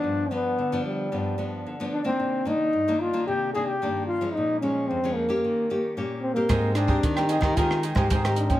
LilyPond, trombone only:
\new Staff \with { instrumentName = "Trombone" } { \time 4/4 \key g \phrygian \tempo 4 = 112 d'8 b4 g4. r8 d'16 c'16~ | c'8 ees'4 f'8 g'8 aes'16 g'8. f'8 | ees'8 des'8 c'8 bes4. r8 c'16 bes16~ | bes8 d'4 ees'8 f'8 r4 d'16 des'16 | }